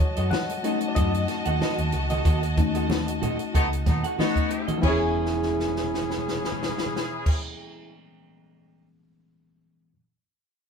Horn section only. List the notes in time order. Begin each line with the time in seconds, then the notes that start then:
3.54 A3 B3 D#4
3.86 A3 B3 D#4
4.19 B3 D#4 F#4
4.83 E3 C#4 G#4